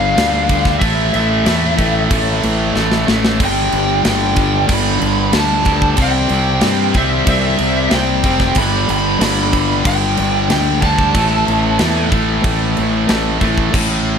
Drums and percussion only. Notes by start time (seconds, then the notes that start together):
0.18 snare, crash
0.49 kick, crash
0.65 kick, snare
0.82 kick, crash
1.14 crash
1.46 snare, crash
1.79 kick, crash
2.11 kick, crash
2.43 crash
2.76 snare
2.92 snare
3.08 snare
3.25 snare
3.40 kick, crash
3.72 crash
4.05 snare, crash
4.36 kick, crash
4.69 kick, crash
5.02 crash
5.33 snare, crash
5.65 kick, crash
5.82 kick
5.97 kick, crash
6.29 crash
6.61 snare, crash
6.94 kick, crash
7.27 kick, crash
7.58 crash
7.91 snare, crash
8.23 kick, crash
8.40 kick, snare
8.55 kick, crash
8.89 crash
9.21 snare, crash
9.53 kick, crash
9.85 kick, crash
10.17 crash
10.50 snare, crash
10.82 kick, crash
10.98 kick
11.15 kick, crash
11.48 crash
11.79 snare, crash
12.12 kick, crash
12.44 kick, crash
12.77 crash
13.09 snare, crash
13.41 kick, crash
13.58 kick
13.74 kick, crash